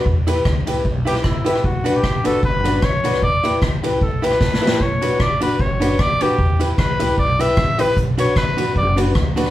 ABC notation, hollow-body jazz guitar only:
X:1
M:4/4
L:1/8
Q:"Swing" 1/4=152
K:Bm
V:1 name="Hollow-body jazz guitar"
z [EGB] z [EGB] z [EGB] z [EGB] | z [DFB] z [DFB] z [DFB] z [DFB] | z [EGB] z [EGB] z [EGB] z [EGB] | z [DFB] z [DFB] z [DFB] z [DFB] |
z [EGB] z [EGB] z [EGB] z [EGB] | z [DFB] z [DFB] z [DFB] z [DFB] |]